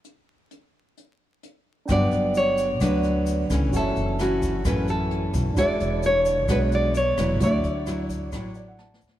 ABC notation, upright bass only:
X:1
M:4/4
L:1/8
Q:1/4=130
K:Glyd
V:1 name="Upright bass" clef=bass
z8 | G,,, G,,,3 D,,3 C,, | F,,, F,,,3 A,,,3 B,,, | E,,, E,,,3 B,,,3 E,,, |
D,, D,,3 A,,,3 D,, |]